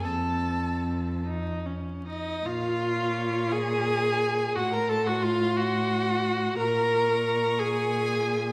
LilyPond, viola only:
\new Staff \with { instrumentName = "Viola" } { \time 6/8 \key bes \minor \tempo 4. = 58 c'4. ees'8 des'8 ees'8 | f'4. aes'4. | fis'16 bes'16 a'16 fis'16 f'8 fis'4. | bes'4. aes'4. | }